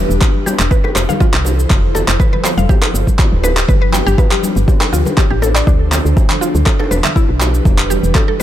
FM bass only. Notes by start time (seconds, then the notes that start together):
0.09 E1
0.59 E1
0.95 F1
1.34 C2
1.70 F1
2.08 F1
2.57 F1
2.94 G1
3.32 D1
3.69 G1
4.07 G1
4.56 G1
4.93 D2
5.31 A1
5.67 D2
6.05 D2
6.55 D2
6.91 E1
7.29 B1
7.65 E1
8.03 E1